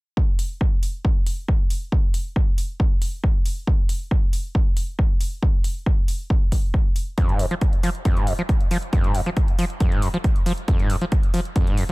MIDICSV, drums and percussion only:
0, 0, Header, 1, 2, 480
1, 0, Start_track
1, 0, Key_signature, -4, "minor"
1, 0, Tempo, 437956
1, 186, Time_signature, 4, 2, 24, 8
1, 13062, End_track
2, 0, Start_track
2, 0, Title_t, "Drums"
2, 187, Note_on_c, 9, 36, 114
2, 296, Note_off_c, 9, 36, 0
2, 426, Note_on_c, 9, 46, 104
2, 536, Note_off_c, 9, 46, 0
2, 667, Note_on_c, 9, 36, 111
2, 776, Note_off_c, 9, 36, 0
2, 907, Note_on_c, 9, 46, 102
2, 1016, Note_off_c, 9, 46, 0
2, 1147, Note_on_c, 9, 36, 114
2, 1256, Note_off_c, 9, 36, 0
2, 1387, Note_on_c, 9, 46, 102
2, 1496, Note_off_c, 9, 46, 0
2, 1627, Note_on_c, 9, 36, 115
2, 1736, Note_off_c, 9, 36, 0
2, 1867, Note_on_c, 9, 46, 100
2, 1977, Note_off_c, 9, 46, 0
2, 2107, Note_on_c, 9, 36, 120
2, 2217, Note_off_c, 9, 36, 0
2, 2347, Note_on_c, 9, 46, 108
2, 2456, Note_off_c, 9, 46, 0
2, 2587, Note_on_c, 9, 36, 117
2, 2696, Note_off_c, 9, 36, 0
2, 2827, Note_on_c, 9, 46, 105
2, 2937, Note_off_c, 9, 46, 0
2, 3067, Note_on_c, 9, 36, 119
2, 3176, Note_off_c, 9, 36, 0
2, 3307, Note_on_c, 9, 46, 104
2, 3416, Note_off_c, 9, 46, 0
2, 3546, Note_on_c, 9, 36, 119
2, 3656, Note_off_c, 9, 36, 0
2, 3786, Note_on_c, 9, 46, 102
2, 3896, Note_off_c, 9, 46, 0
2, 4027, Note_on_c, 9, 36, 122
2, 4136, Note_off_c, 9, 36, 0
2, 4266, Note_on_c, 9, 46, 110
2, 4375, Note_off_c, 9, 46, 0
2, 4506, Note_on_c, 9, 36, 121
2, 4616, Note_off_c, 9, 36, 0
2, 4746, Note_on_c, 9, 46, 104
2, 4855, Note_off_c, 9, 46, 0
2, 4986, Note_on_c, 9, 36, 123
2, 5096, Note_off_c, 9, 36, 0
2, 5225, Note_on_c, 9, 46, 107
2, 5334, Note_off_c, 9, 46, 0
2, 5466, Note_on_c, 9, 36, 121
2, 5576, Note_off_c, 9, 36, 0
2, 5705, Note_on_c, 9, 46, 109
2, 5814, Note_off_c, 9, 46, 0
2, 5946, Note_on_c, 9, 36, 123
2, 6056, Note_off_c, 9, 36, 0
2, 6185, Note_on_c, 9, 46, 108
2, 6295, Note_off_c, 9, 46, 0
2, 6426, Note_on_c, 9, 36, 121
2, 6536, Note_off_c, 9, 36, 0
2, 6665, Note_on_c, 9, 46, 106
2, 6775, Note_off_c, 9, 46, 0
2, 6906, Note_on_c, 9, 36, 121
2, 7015, Note_off_c, 9, 36, 0
2, 7146, Note_on_c, 9, 36, 63
2, 7146, Note_on_c, 9, 46, 106
2, 7255, Note_off_c, 9, 46, 0
2, 7256, Note_off_c, 9, 36, 0
2, 7386, Note_on_c, 9, 36, 117
2, 7495, Note_off_c, 9, 36, 0
2, 7625, Note_on_c, 9, 46, 104
2, 7735, Note_off_c, 9, 46, 0
2, 7865, Note_on_c, 9, 42, 86
2, 7866, Note_on_c, 9, 36, 115
2, 7975, Note_off_c, 9, 42, 0
2, 7976, Note_off_c, 9, 36, 0
2, 7991, Note_on_c, 9, 42, 49
2, 8101, Note_off_c, 9, 42, 0
2, 8104, Note_on_c, 9, 46, 102
2, 8214, Note_off_c, 9, 46, 0
2, 8231, Note_on_c, 9, 42, 48
2, 8341, Note_off_c, 9, 42, 0
2, 8345, Note_on_c, 9, 42, 88
2, 8346, Note_on_c, 9, 36, 114
2, 8455, Note_off_c, 9, 42, 0
2, 8456, Note_off_c, 9, 36, 0
2, 8471, Note_on_c, 9, 42, 50
2, 8581, Note_off_c, 9, 42, 0
2, 8585, Note_on_c, 9, 46, 105
2, 8695, Note_off_c, 9, 46, 0
2, 8712, Note_on_c, 9, 42, 47
2, 8821, Note_off_c, 9, 42, 0
2, 8825, Note_on_c, 9, 42, 86
2, 8826, Note_on_c, 9, 36, 115
2, 8934, Note_off_c, 9, 42, 0
2, 8935, Note_off_c, 9, 36, 0
2, 8952, Note_on_c, 9, 42, 49
2, 9062, Note_off_c, 9, 42, 0
2, 9065, Note_on_c, 9, 46, 101
2, 9175, Note_off_c, 9, 46, 0
2, 9192, Note_on_c, 9, 42, 48
2, 9301, Note_off_c, 9, 42, 0
2, 9305, Note_on_c, 9, 42, 88
2, 9306, Note_on_c, 9, 36, 113
2, 9415, Note_off_c, 9, 36, 0
2, 9415, Note_off_c, 9, 42, 0
2, 9432, Note_on_c, 9, 42, 50
2, 9541, Note_off_c, 9, 42, 0
2, 9545, Note_on_c, 9, 46, 101
2, 9655, Note_off_c, 9, 46, 0
2, 9672, Note_on_c, 9, 42, 49
2, 9782, Note_off_c, 9, 42, 0
2, 9785, Note_on_c, 9, 42, 85
2, 9786, Note_on_c, 9, 36, 112
2, 9894, Note_off_c, 9, 42, 0
2, 9895, Note_off_c, 9, 36, 0
2, 9911, Note_on_c, 9, 42, 49
2, 10021, Note_off_c, 9, 42, 0
2, 10024, Note_on_c, 9, 46, 101
2, 10133, Note_off_c, 9, 46, 0
2, 10151, Note_on_c, 9, 42, 50
2, 10261, Note_off_c, 9, 42, 0
2, 10265, Note_on_c, 9, 42, 85
2, 10266, Note_on_c, 9, 36, 108
2, 10374, Note_off_c, 9, 42, 0
2, 10375, Note_off_c, 9, 36, 0
2, 10392, Note_on_c, 9, 42, 49
2, 10502, Note_off_c, 9, 42, 0
2, 10505, Note_on_c, 9, 46, 102
2, 10615, Note_off_c, 9, 46, 0
2, 10631, Note_on_c, 9, 42, 48
2, 10741, Note_off_c, 9, 42, 0
2, 10745, Note_on_c, 9, 42, 87
2, 10746, Note_on_c, 9, 36, 109
2, 10855, Note_off_c, 9, 36, 0
2, 10855, Note_off_c, 9, 42, 0
2, 10871, Note_on_c, 9, 42, 49
2, 10981, Note_off_c, 9, 42, 0
2, 10985, Note_on_c, 9, 46, 101
2, 11095, Note_off_c, 9, 46, 0
2, 11111, Note_on_c, 9, 42, 49
2, 11221, Note_off_c, 9, 42, 0
2, 11225, Note_on_c, 9, 42, 87
2, 11226, Note_on_c, 9, 36, 112
2, 11335, Note_off_c, 9, 42, 0
2, 11336, Note_off_c, 9, 36, 0
2, 11352, Note_on_c, 9, 42, 51
2, 11462, Note_off_c, 9, 42, 0
2, 11465, Note_on_c, 9, 46, 99
2, 11575, Note_off_c, 9, 46, 0
2, 11591, Note_on_c, 9, 42, 50
2, 11701, Note_off_c, 9, 42, 0
2, 11705, Note_on_c, 9, 42, 91
2, 11706, Note_on_c, 9, 36, 109
2, 11815, Note_off_c, 9, 42, 0
2, 11816, Note_off_c, 9, 36, 0
2, 11831, Note_on_c, 9, 42, 50
2, 11941, Note_off_c, 9, 42, 0
2, 11944, Note_on_c, 9, 46, 97
2, 12054, Note_off_c, 9, 46, 0
2, 12071, Note_on_c, 9, 42, 52
2, 12181, Note_off_c, 9, 42, 0
2, 12185, Note_on_c, 9, 42, 91
2, 12187, Note_on_c, 9, 36, 112
2, 12295, Note_off_c, 9, 42, 0
2, 12296, Note_off_c, 9, 36, 0
2, 12312, Note_on_c, 9, 42, 51
2, 12422, Note_off_c, 9, 42, 0
2, 12425, Note_on_c, 9, 46, 97
2, 12535, Note_off_c, 9, 46, 0
2, 12553, Note_on_c, 9, 42, 49
2, 12663, Note_off_c, 9, 42, 0
2, 12666, Note_on_c, 9, 42, 91
2, 12667, Note_on_c, 9, 36, 108
2, 12776, Note_off_c, 9, 42, 0
2, 12777, Note_off_c, 9, 36, 0
2, 12793, Note_on_c, 9, 42, 52
2, 12902, Note_off_c, 9, 42, 0
2, 12906, Note_on_c, 9, 46, 95
2, 13015, Note_off_c, 9, 46, 0
2, 13062, End_track
0, 0, End_of_file